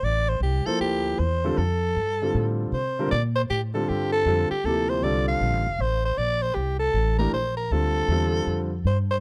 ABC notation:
X:1
M:4/4
L:1/8
Q:"Swing" 1/4=156
K:Bblyd
V:1 name="Soprano saxophone"
d c G A G2 c2 | A4- A z c2 | d c G A G A2 G | A c d f3 c c |
d c G A2 B c B | A4- A z c c |]
V:2 name="Grand piano"
z3 [F,B,EAc]3 z [D,G,CFA] | z3 [D,G,CFA]3 z [D,G,CFB] | z3 [D,G,CFA]3 [D,G,CFA] z | [C,F,B,EG]2 [D,G,CFA]3 z3 |
z4 z [E,A,DGB] z2 | [D,G,CFA]2 [D,G,CFA]3 z3 |]
V:3 name="Upright bass" clef=bass
A,,,2 C,, z D,,2 E,,2 | F,,2 G,,2 A,,2 C,2 | B,,2 A,,2 G,,2 F,, z | D,,2 C,,2 (3B,,, A,,, F,,, A,,,2 |
B,,,2 C,,2 A,,,2 B,,,2 | D,,2 E,,2 F,,2 G,,2 |]